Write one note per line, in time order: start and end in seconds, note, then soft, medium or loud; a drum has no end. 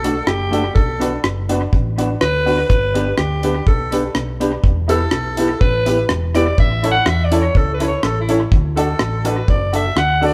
0.00 0.20 B1 loud
0.00 0.21 D4 medium
0.00 0.29 A4 loud
0.04 0.15 A3 medium
0.04 0.15 D4 medium
0.04 0.21 F#4 medium
0.04 0.15 F#4 medium
0.04 0.21 A4 medium
0.04 closed hi-hat loud
0.27 0.68 F#1 medium
0.27 0.74 G4 loud
0.27 cross-stick loud
0.51 0.62 A3 medium
0.51 0.63 D4 medium
0.51 0.69 D4 loud
0.51 0.63 F#4 loud
0.51 0.69 F#4 medium
0.51 0.70 A4 loud
0.51 closed hi-hat medium
0.75 1.17 B1 loud
0.75 1.21 A4 medium
0.75 kick loud
1.00 1.11 B3 medium
1.00 1.11 D4 loud
1.00 1.18 D4 loud
1.00 1.12 F#4 loud
1.00 1.18 F#4 medium
1.00 1.18 B4 loud
1.00 closed hi-hat medium
1.23 1.65 F#1 loud
1.23 muted hollow-body jazz guitar stroke soft
1.23 cross-stick loud
1.49 1.60 B3 medium
1.49 1.66 D4 medium
1.49 1.60 D4 loud
1.49 1.66 F#4 medium
1.49 1.61 F#4 loud
1.49 1.67 B4 loud
1.49 closed hi-hat loud
1.73 2.14 A1 loud
1.73 kick loud
1.98 2.09 B3 medium
1.98 2.15 D4 medium
1.98 2.09 D4 medium
1.98 2.15 F#4 medium
1.98 2.09 F#4 medium
1.98 2.15 B4 loud
1.98 closed hi-hat medium
2.21 2.63 D2 medium
2.21 2.67 B4 loud
2.21 muted hollow-body jazz guitar stroke soft
2.21 cross-stick loud
2.45 2.57 B3 medium
2.45 2.63 D4 medium
2.45 2.58 D4 medium
2.45 2.63 F#4 medium
2.45 2.58 F#4 medium
2.45 2.63 B4 loud
2.45 open hi-hat medium
2.69 3.11 G1 loud
2.69 3.15 B4 loud
2.69 kick loud
2.69 hi-hat pedal medium
2.94 3.06 B3 medium
2.94 3.11 D4 medium
2.94 3.06 D4 medium
2.94 3.12 G4 medium
2.94 3.06 G4 medium
2.94 3.12 B4 loud
2.94 closed hi-hat medium
3.18 3.60 D2 medium
3.18 3.63 G4 medium
3.18 muted hollow-body jazz guitar stroke soft
3.18 cross-stick loud
3.43 3.55 B3 medium
3.43 3.60 D4 medium
3.43 3.55 D4 medium
3.43 3.61 G4 medium
3.43 3.55 G4 medium
3.43 3.61 B4 loud
3.43 closed hi-hat medium
3.66 4.08 B1 loud
3.66 4.13 A4 medium
3.66 kick loud
3.92 4.03 B3 medium
3.92 4.09 D4 medium
3.92 4.03 D4 medium
3.92 4.09 G4 medium
3.92 4.04 G4 medium
3.92 4.09 B4 loud
3.92 closed hi-hat medium
4.15 4.57 B1 medium
4.15 cross-stick loud
4.40 4.51 B3 medium
4.40 4.57 D4 loud
4.40 4.52 D4 medium
4.40 4.58 G4 medium
4.40 4.52 G4 medium
4.40 4.58 B4 loud
4.40 closed hi-hat medium
4.63 5.05 E1 loud
4.63 kick loud
4.88 5.00 B3 medium
4.88 5.05 E4 loud
4.88 5.00 E4 medium
4.88 5.06 G4 medium
4.88 5.00 G4 medium
4.88 5.57 A4 loud
4.88 5.06 B4 loud
4.88 closed hi-hat medium
5.11 5.54 B1 medium
5.11 muted hollow-body jazz guitar stroke medium
5.11 cross-stick loud
5.37 5.49 B3 medium
5.37 5.54 E4 medium
5.37 5.49 E4 medium
5.37 5.54 G4 medium
5.37 5.49 G4 medium
5.37 5.55 B4 loud
5.37 closed hi-hat loud
5.60 6.02 A1 loud
5.60 6.06 B4 loud
5.60 kick loud
5.86 5.97 B3 medium
5.86 6.03 E4 medium
5.86 5.98 E4 medium
5.86 6.03 G4 medium
5.86 5.98 G4 medium
5.86 6.03 B4 loud
5.86 closed hi-hat medium
6.09 6.51 E1 medium
6.09 muted hollow-body jazz guitar stroke soft
6.09 cross-stick loud
6.34 6.46 B3 medium
6.34 6.51 E4 loud
6.34 6.46 E4 medium
6.34 6.52 G4 medium
6.34 6.46 G4 medium
6.34 6.52 B4 loud
6.34 6.57 D5 loud
6.34 cross-stick medium
6.34 closed hi-hat medium
6.58 6.99 A1 loud
6.58 6.89 E5 loud
6.58 kick loud
6.83 6.94 C#4 medium
6.83 7.00 E4 loud
6.83 6.94 E4 medium
6.83 7.00 A4 medium
6.83 6.95 A4 loud
6.83 7.00 C#5 loud
6.83 closed hi-hat medium
6.91 7.09 F#5 loud
7.06 7.47 E2 medium
7.06 7.26 E5 loud
7.06 muted hollow-body jazz guitar stroke soft
7.06 cross-stick loud
7.25 7.42 D5 loud
7.31 7.42 C#4 medium
7.31 7.48 E4 medium
7.31 7.42 E4 loud
7.31 7.49 A4 medium
7.31 7.43 A4 loud
7.31 7.49 C#5 loud
7.31 closed hi-hat loud
7.40 7.59 C#5 loud
7.55 7.96 C#2 loud
7.55 7.72 A4 loud
7.55 kick loud
7.74 7.87 B4 medium
7.80 7.91 C#4 medium
7.80 7.97 E4 medium
7.80 7.91 E4 medium
7.80 7.97 A4 medium
7.80 7.91 A4 medium
7.80 7.97 C#5 loud
7.80 closed hi-hat medium
7.88 8.05 C#5 loud
8.03 8.44 A1 medium
8.03 8.20 A4 loud
8.03 cross-stick loud
8.21 8.43 E4 medium
8.29 8.39 C#4 medium
8.29 8.45 E4 loud
8.29 8.40 E4 loud
8.29 8.45 A4 medium
8.29 8.40 A4 medium
8.29 8.46 C#5 loud
8.29 closed hi-hat medium
8.52 8.93 D2 loud
8.52 kick loud
8.77 8.87 D4 medium
8.77 8.94 F#4 loud
8.77 8.88 F#4 medium
8.77 9.28 A4 loud
8.77 8.94 A4 medium
8.77 8.88 A4 medium
8.77 8.94 D5 loud
8.77 closed hi-hat medium
8.99 9.41 A1 medium
8.99 muted hollow-body jazz guitar stroke soft
8.99 cross-stick loud
9.25 9.35 D4 medium
9.25 9.36 F#4 loud
9.25 9.42 F#4 medium
9.25 9.36 A4 loud
9.25 9.42 A4 medium
9.25 9.49 B4 medium
9.25 9.42 D5 loud
9.25 closed hi-hat loud
9.48 9.89 F#1 loud
9.48 9.73 D5 loud
9.48 kick loud
9.73 9.84 D4 medium
9.73 9.90 F#4 medium
9.73 9.84 F#4 medium
9.73 9.90 A4 medium
9.73 9.85 A4 loud
9.73 9.90 D5 loud
9.73 9.99 E5 loud
9.73 closed hi-hat medium
9.96 10.34 D2 loud
9.96 10.23 F#5 loud
9.96 muted hollow-body jazz guitar stroke soft
9.96 cross-stick loud
10.21 10.32 D4 medium
10.21 10.34 F#4 loud
10.21 10.33 F#4 loud
10.21 10.34 A4 loud
10.21 10.33 A4 loud
10.21 10.34 D5 loud
10.21 open hi-hat soft